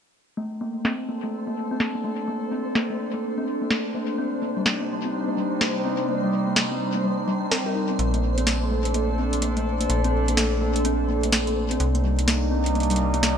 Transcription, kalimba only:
0.37 0.48 A3 medium
0.61 0.72 A#3 medium
0.85 0.99 C4 medium
1.09 1.20 A#3 medium
1.23 1.30 A3 medium
1.47 1.54 A#3 medium
1.71 1.80 C4 medium
1.95 2.02 A#3 medium
2.04 2.15 A3 medium
2.28 2.39 A#3 medium
2.51 2.66 C4 medium
2.75 2.86 A#3 medium
2.90 2.97 A3 medium
3.14 3.21 A#3 medium
3.38 3.46 C4 medium
3.61 3.68 A#3 medium
3.71 3.82 A3 medium
3.94 4.05 A#3 medium
4.18 4.32 C4 medium
4.42 4.53 A#3 medium
4.57 4.63 G3 medium
4.81 4.87 A#3 medium
5.04 5.13 C4 medium
5.28 5.35 A#3 medium
5.37 5.48 G3 medium
5.61 5.72 A#3 medium
5.85 5.99 C4 medium
6.09 6.20 A#3 medium
6.23 6.30 G3 medium
6.47 6.54 A#3 medium
6.71 6.80 C4 medium
6.95 7.02 A#3 medium
7.04 7.15 G3 medium
7.28 7.39 G3 loud
7.51 7.62 C4 medium
7.66 7.73 A#4 medium
7.75 7.86 D#4 medium
7.90 7.99 C4 medium
8.14 8.21 A#3 medium
8.38 8.46 C4 medium
8.61 8.68 A#3 medium
8.71 8.82 A3 medium
8.94 9.05 A#3 medium
9.18 9.32 C4 medium
9.42 9.53 A#3 medium
9.57 9.63 A3 medium
9.81 9.87 A#3 medium
10.04 10.13 C4 medium
10.28 10.35 A#3 medium
10.37 10.48 A3 medium
10.61 10.72 A#3 medium
10.85 10.99 C4 medium
11.09 11.20 A#3 medium
11.23 11.30 A3 medium
11.47 11.54 A#3 medium
11.71 11.80 C4 medium
11.95 12.02 A#3 medium
12.04 12.15 G3 medium
12.28 12.39 A#3 medium
12.51 12.66 C4 medium
12.75 12.86 A#3 medium
12.90 12.97 G3 medium
13.14 13.21 A#3 medium

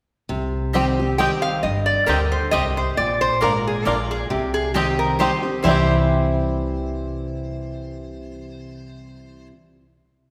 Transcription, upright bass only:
0.30 1.27 C2 loud
1.63 1.96 G1 medium
2.08 2.46 D2 medium
2.53 2.91 C2 medium
2.98 3.30 A#1 medium
3.42 3.80 G#1 medium
3.86 4.24 A#1 medium
4.31 5.28 C2 medium
5.64 9.48 C2 loud

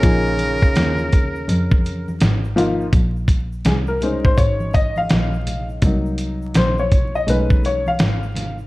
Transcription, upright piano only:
0.02 1.02 F3 medium
0.02 1.03 A#3 medium
0.02 1.03 D#4 medium
0.02 1.03 G#4 medium
2.56 2.84 F3 medium
2.56 2.84 A#3 medium
2.56 2.84 D#4 medium
2.56 2.85 F4 medium
3.66 3.71 G#4 medium
3.88 4.25 A#4 medium
4.02 5.78 G#3 medium
4.02 5.79 C#4 soft
4.02 5.79 D#4 medium
4.02 4.24 C5 medium
4.25 4.38 C5 medium
4.37 4.75 C#5 medium
4.74 4.97 D#5 loud
4.98 5.65 F5 loud
5.83 6.87 F#3 medium
5.83 6.87 A#3 soft
5.83 6.88 D#4 medium
6.57 6.79 C5 medium
6.79 7.12 C#5 medium
7.15 7.28 D#5 medium
7.27 7.79 G#3 medium
7.27 7.79 A3 medium
7.27 7.79 C#4 medium
7.27 7.79 D#4 medium
7.27 7.65 B4 medium
7.66 7.88 C#5 medium
7.88 8.55 F5 loud

